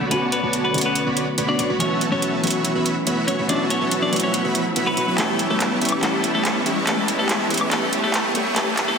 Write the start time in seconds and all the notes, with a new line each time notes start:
Already playing: D3 A3 B3 C#4 F#4, riser
0.01 B1 B3 F#4 C#5 D5 B5
0.09 B1 D3 A3 B3 C#4 F#4 B4 C#5 D5 A5, closed hi-hat
0.13 F#4
0.32 B3 B4, closed hi-hat
0.43 B1 B3 F#4 C#5 D5 A5
0.53 closed hi-hat
0.64 B3 B4
0.72 B1 D3 A3 B3 C#4 F#4 C#5 D5 C#6, closed hi-hat
0.78 closed hi-hat
0.81 B3, closed hi-hat
0.86 B4
0.95 closed hi-hat
1.06 B1 B3 F#4 C#5 D5 B5
1.17 closed hi-hat
1.38 B1 B3 F#4 C#5 D5 B5, closed hi-hat
1.48 D4 D5
1.59 B1 B3 F#4 C#5 D5 C#6, closed hi-hat
1.70 B1 B3 F#4 C#5 D5 B5
1.78 B1 E3 F#3 A3 B3 C#4 E4 F#4 C#5 E5 A5, closed hi-hat
2.01 closed hi-hat
2.12 B1 B3 C#4 F#4 C#5 E5 A5
2.22 closed hi-hat
2.41 B1 E3 F#3 A3 B3 C#4 F#4 C#5 E5 C#6, closed hi-hat
2.47 closed hi-hat
2.50 closed hi-hat
2.65 closed hi-hat
2.75 B1 B3 F#4 C#5 E5 B5
2.86 closed hi-hat
3.07 B1 B3 F#4 C#5 E5 B5, closed hi-hat
3.28 B1 B3 C#4 F#4 C#5 E5 C#6, closed hi-hat
3.39 B1 B3 F#4 C#5 E5 B5
3.47 B1 E3 F#3 A3 B3 C#4 D4 F#4 C#5 D5 E5 A5, closed hi-hat
3.51 F#4
3.70 C#4 C#5, closed hi-hat
3.81 B1 B3 F#4 C#5 E5 A5
3.91 closed hi-hat
4.02 D4 D5
4.10 B1 E3 F#3 A3 B3 C#4 F#4 C#5 E5 C#6, closed hi-hat
4.15 F#4, closed hi-hat
4.20 C#4 C#5, closed hi-hat
4.34 closed hi-hat
4.44 B1 B3 F#4 C#5 E5 B5
4.55 closed hi-hat
4.76 B1 B3 F#4 C#5 E5 B5, closed hi-hat
4.87 B3 B4
4.97 B1 B3 F#4 C#5 E5 C#6, closed hi-hat
5.08 B1 B3 F#4 C#5 E5 B5
5.16 B1 E3 G3 A3 B3 C#4 G4 A4 C#5 E5 A5, clap, closed hi-hat
5.20 G4
5.39 closed hi-hat
5.50 B1 A3 B3 G4 A4 C#5 E5 A5
5.60 clap, closed hi-hat
5.80 B1 E3 G3 A3 B3 C#4 G4 C#5 E5 C#6, closed hi-hat
5.85 closed hi-hat
5.89 closed hi-hat, high woodblock
6.01 B1 E3 G3 A3 B3 C#4 G4 A4 C#5 E5 A5, clap, closed hi-hat
6.24 closed hi-hat
6.34 B1 A3 B3 G4 A4 C#5 E5 A5
6.45 clap, closed hi-hat
6.64 B1 E3 G3 A3 B3 C#4 G4 C#5 E5 C#6, closed hi-hat
6.68 G4
6.85 B1 E3 G3 A3 B3 C#4 G4 A4 C#5 E5 A5, clap, closed hi-hat
6.89 G4
7.08 closed hi-hat
7.19 B1 A3 B3 G4 A4 C#5 E5 A5
7.29 clap, closed hi-hat
7.48 B1 E3 G3 A3 B3 C#4 G4 C#5 E5 C#6, closed hi-hat
7.54 closed hi-hat
7.57 closed hi-hat, high woodblock
7.69 B1 E3 G3 A3 B3 C#4 G4 A4 C#5 E5 A5, clap, closed hi-hat
7.93 closed hi-hat
8.03 B1 A3 B3 G4 A4 C#5 E5 A5
8.14 clap, closed hi-hat
8.33 B1 E3 G3 A3 B3 C#4 G4 C#5 E5 C#6, closed hi-hat
8.37 G4
8.54 B1 D3 E3 G3 A3 B3 C#4 G4 A4 C#5 E5 A5, clap, closed hi-hat
8.77 clap, closed hi-hat
8.88 B1 A3 B3 G4 A4 C#5 E5 A5